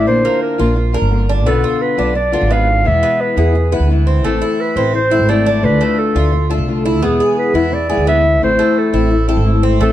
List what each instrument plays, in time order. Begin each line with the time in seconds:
Already playing: cuban tres D4
0.06 upright bass A#1, steel-string acoustic guitar D3 A#3 D4 F4, clarinet C5
0.25 cuban tres A#3
0.42 clarinet A#4
0.58 upright bass A#1, steel-string acoustic guitar A#3 D4 F4, cuban tres F4
0.76 muted steel-string acoustic guitar stroke
0.93 steel-string acoustic guitar A#3 D4 F4, cuban tres A#4
1.02 upright bass G1
1.11 steel-string acoustic guitar D3 A#3 D4 F4
1.29 cuban tres D4
1.45 upright bass B1, steel-string acoustic guitar B2 D3 B3 D4 F4, cuban tres B3, clarinet A4
1.64 cuban tres F4
1.82 clarinet B4
1.97 upright bass B1, steel-string acoustic guitar D3 B3 D4 F4, cuban tres D4
2.15 clarinet D5, muted steel-string acoustic guitar stroke
2.32 steel-string acoustic guitar D3 B3 D4 F4, cuban tres F4
2.42 upright bass G#1
2.50 steel-string acoustic guitar D3 B3 D4 F4, cuban tres B3, clarinet F5
2.84 upright bass E2, steel-string acoustic guitar B2 E3 G#3 B3 E4, clarinet E5
3.03 cuban tres B3
3.21 clarinet B4
3.36 upright bass E2, steel-string acoustic guitar E3 G#3 B3 E4, cuban tres G#4
3.55 muted steel-string acoustic guitar stroke
3.72 steel-string acoustic guitar E3 G#3 B3 E4, cuban tres B4
3.80 upright bass D2
3.89 steel-string acoustic guitar E3 G#3 B3 E4
4.07 cuban tres C4
4.24 upright bass A1, steel-string acoustic guitar E3 A3 C4 E4, cuban tres A3, clarinet A4
4.42 cuban tres E4
4.61 clarinet B4
4.76 upright bass A1, steel-string acoustic guitar A3 C4 E4, cuban tres C4
4.94 clarinet C5, muted steel-string acoustic guitar stroke
5.10 steel-string acoustic guitar A3 C4 E4, cuban tres E4
5.19 upright bass G#1
5.28 steel-string acoustic guitar E3 A3 C4 E4, cuban tres A3, clarinet D5
5.46 cuban tres D4
5.62 upright bass D2, steel-string acoustic guitar D3 A3 D4 F4, clarinet B4
5.81 cuban tres A3
5.99 clarinet A4
6.15 upright bass D2, steel-string acoustic guitar A3 D4 F4, cuban tres F4
6.32 muted steel-string acoustic guitar stroke
6.50 steel-string acoustic guitar A3 D4 F4, cuban tres A4
6.58 upright bass C2
6.67 steel-string acoustic guitar D3 A3 D4 F4
6.85 cuban tres E4
7.02 upright bass E2, steel-string acoustic guitar B2 E3 G#3 B3 E4, cuban tres B3, clarinet G#4
7.20 cuban tres G#4
7.39 clarinet B4
7.54 upright bass E2, steel-string acoustic guitar E3 G#3 B3 E4, cuban tres E4
7.72 clarinet D5, muted steel-string acoustic guitar stroke
7.89 steel-string acoustic guitar E3 G#3 B3 E4, cuban tres G#4
7.97 upright bass D2
8.07 steel-string acoustic guitar E3 G#3 B3 E4, cuban tres B3, clarinet E5
8.41 upright bass A1, steel-string acoustic guitar E3 A3 C4 E4, clarinet C5
8.59 cuban tres A3
8.78 clarinet A4
8.93 upright bass A1, steel-string acoustic guitar A3 C4 E4, cuban tres E4
9.10 muted steel-string acoustic guitar stroke
9.28 steel-string acoustic guitar A3 C4 E4, cuban tres A4
9.37 upright bass G#1
9.44 steel-string acoustic guitar E3 A3 C4 E4
9.63 cuban tres C4
9.80 upright bass A1, steel-string acoustic guitar E3 A3 C4 E4, cuban tres A3, clarinet A4